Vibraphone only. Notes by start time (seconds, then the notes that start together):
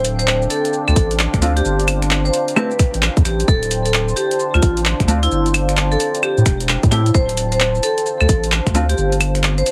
0.19 C5
0.50 A4
0.88 A4
1.56 G4
2.25 C5
2.56 B4
3.25 G4
3.48 A4
3.85 A4
4.16 G4
4.54 F4
5.23 E4
5.92 A4
6.23 G4
6.91 E4
7.14 C5
7.52 C5
7.83 A4
8.20 A4
8.89 G4
9.58 C5